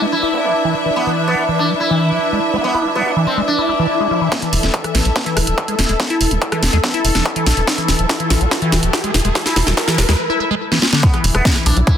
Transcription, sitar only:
0.12 E4
0.96 B3
1.28 B3
1.59 D4
1.80 E4
2.64 B3
2.95 B3
3.27 C4
3.48 D4
11.03 B3
11.35 B3
11.66 D4
11.87 E4

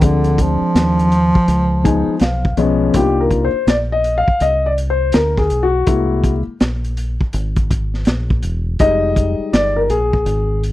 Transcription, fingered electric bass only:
0.02 D2
0.61 muted fingered electric bass stroke
0.75 D#2
1.35 muted fingered electric bass stroke
1.48 C#2
2.07 muted fingered electric bass stroke
2.21 B1
2.57 B1
2.94 C2
3.53 muted fingered electric bass stroke
3.67 A#1
4.27 muted fingered electric bass stroke
4.41 C2
5.15 D2
5.51 B1
5.87 C2
6.47 muted fingered electric bass stroke
6.61 A#1
7.34 G#1
8.07 A#1
8.43 E1
8.80 F1
9.40 muted fingered electric bass stroke
9.53 G1
9.90 A#1
10.26 G#1

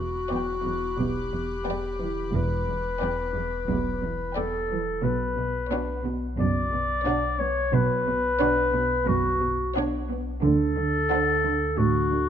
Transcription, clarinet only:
Already playing: F#4
0.98 G4
2.35 B4
4.36 A4
5.03 B4
6.39 D5
7.39 C#5
7.74 B4
9.07 F#4
10.43 A4
11.77 F#4

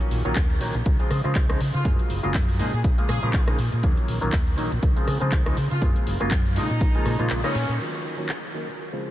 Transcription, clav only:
Already playing: D#3 F#3 A#3 C#4 F4
0.25 D#3 F#3 A#3 C#4 F4
0.61 D#3 F#3 A#3 C#4 D#4
0.99 C#3 F3 G#3 C4 F4
1.24 C#3 F3 G#3 C4 F4
1.49 C#3 F3 G#3 C4 D#4
1.85 C#3 F#3 G#3 A#3 F4
2.23 C#3 F#3 G#3 A#3 F4
2.59 C#3 F3 G#3 A#3 D#4
2.98 C#3 F3 G#3 A#3 F4
3.23 C#3 F3 G#3 A#3 F4
3.47 C#3 F3 G#3 A#3 D#4
3.83 D#3 F#3 A#3 C#4 F4
4.21 D#3 F#3 A#3 C#4 F4
4.57 D#3 F#3 A#3 C#4 D#4
4.96 C#3 F3 G#3 C4 F4
5.20 C#3 F3 G#3 C4 F4
5.46 C#3 F3 G#3 C4 D#4
5.81 C#3 F#3 G#3 A#3 F4
6.20 C#3 F#3 G#3 A#3 F4
6.56 C#3 F3 G#3 A#3 D#4
6.95 C#3 F3 G#3 A#3 F4
7.19 C#3 F3 G#3 A#3 F4
7.44 C#3 F3 G#3 A#3 D#4
7.79 D#3 F#3 A#3 C#4 F4
8.18 D#3 F#3 A#3 C#4 F4
8.54 D#3 F#3 A#3 C#4 D#4
8.93 C#3 F3 G#3 C4 F4

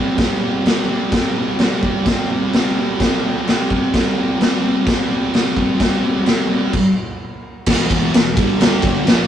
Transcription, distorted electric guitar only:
Already playing: C3 C4
0.00 G3
0.18 C3 G3 C4
0.42 G3 C4
0.65 C3 G3 C4
0.88 C3 G3 C4
1.14 C3 G3 C4
1.34 G3 C4
1.58 C3 G3 C4
1.82 G3 C4
2.08 C3 G3 C4
2.31 G3 C4
2.53 C3 G3 C4
2.76 C3 G3 C4
3.01 C3 G3 C4
3.23 G3 C4
3.46 C3 G3 C4
3.71 G3 C4
3.94 C3 G3 C4
4.17 G3 C4
4.37 C3 G3
4.42 C4
4.60 C3 G3 C4
4.85 C3 G3 C4
5.08 G3 C4
5.33 C3 G3 C4
5.57 G3 C4
5.78 C3 G3 C4
6.03 G3 C4
6.25 C3 G3 C4
6.49 C3 G3 C4
7.68 E2 B2 E3
8.15 E2 B2
8.37 G2 D3 G3
9.07 A#2 F3 A#3

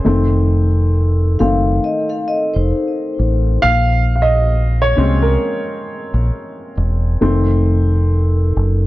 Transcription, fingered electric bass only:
0.06 F1
1.40 F#1
2.56 F1
3.19 A1
3.64 A#1
4.98 C2
6.14 A#1
6.77 E1
7.22 F1
8.56 F#1

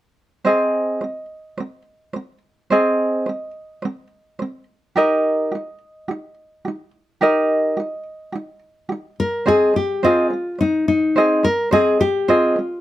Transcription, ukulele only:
0.45 C4 G#4 C5 D#5
1.01 C4 C5
1.58 C4 C5
2.13 C4 C5
2.70 C4 G#4 C5 D#5
3.26 C4 C5
3.82 C4 C5
4.39 C4 C5
4.96 D#4 G4 A#4 D#5
5.52 D#4 G4
6.08 D#4 G4
6.65 D#4 G4
7.21 D#4 G4 A#4 D#5
7.77 D#4 G4
8.32 D#4 G4
8.89 D#4 G4
9.46 C4 G#4 C5 D#5
9.74 C4 C5
10.03 C4 G#4 C5 D#5
10.30 C5
10.58 C4 C5
11.16 C4 G#4 C5 D#5
11.43 C4 C5
11.71 C4 G#4 C5 D#5
12.00 C4 C5
12.28 C4 G#4 C5 D#5
12.56 C5

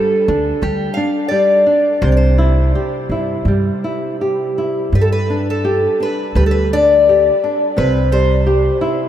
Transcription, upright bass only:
0.28 D2
0.62 D2
2.02 C2
3.09 G2
3.45 G2
4.92 G2
6.35 D2
7.78 C2

